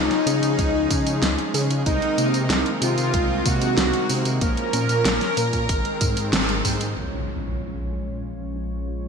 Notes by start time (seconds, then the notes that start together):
Already playing: F3 G#3 C#4 D#4 G#4
0.11 snare, closed hi-hat
0.26 C#3 G#4, closed hi-hat, tambourine
0.42 C#3, closed hi-hat, tambourine
0.59 C#2 G#3, kick, closed hi-hat, tambourine
0.91 C#3 C#4, kick, closed hi-hat, tambourine
1.06 C#3, closed hi-hat, tambourine
1.22 C#2 F4, snare, closed hi-hat, tambourine
1.38 closed hi-hat
1.54 C#3 F3 C#4 G#4, open hi-hat, tambourine
1.70 C#3, closed hi-hat, tambourine
1.86 C2 C3 D#3 G#3 A#3 C4 D#4 A#4, kick, closed hi-hat, tambourine
2.02 closed hi-hat
2.18 C3 A#3, closed hi-hat, tambourine
2.34 C3, closed hi-hat, tambourine
2.50 C2 C4, snare, closed hi-hat, tambourine
2.66 closed hi-hat
2.82 C3 D#4 F4, closed hi-hat, tambourine
2.97 C3, closed hi-hat, tambourine
3.14 C2 G#3, kick, closed hi-hat, tambourine
3.46 C3 A#3 F#4, kick, closed hi-hat, tambourine
3.61 C3, closed hi-hat, tambourine
3.77 C2 C4, snare, closed hi-hat, tambourine
3.93 closed hi-hat
4.09 C3 G#3 C4 D#4 A#4, open hi-hat, tambourine
4.25 C3, closed hi-hat, tambourine
4.41 A#1 F3 A#3 C#4 A#4, kick, closed hi-hat, tambourine
4.57 closed hi-hat
4.73 A#2 C#4, closed hi-hat, tambourine
4.89 A#2, closed hi-hat, tambourine
5.05 A#1 F4, snare, closed hi-hat, tambourine
5.21 snare, closed hi-hat
5.37 A#2 A#4, closed hi-hat, tambourine
5.53 A#2, kick, closed hi-hat, tambourine
5.69 G#1 D#3 G#3 C4, kick, closed hi-hat, tambourine
5.85 closed hi-hat
6.01 G#2 D#4, kick, closed hi-hat, tambourine
6.17 G#2, closed hi-hat, tambourine
6.33 G#1 C4, snare, closed hi-hat, tambourine
6.49 closed hi-hat
6.65 G#2 G#3 D#4 G#4 C5, kick, open hi-hat, tambourine
6.81 G#2, closed hi-hat, tambourine
6.96 A#1 F3 G#3 C#4 F4 C#5, impact
7.29 C#4
7.61 F4
7.92 G#4
8.24 G#3
8.56 C#4
8.88 F4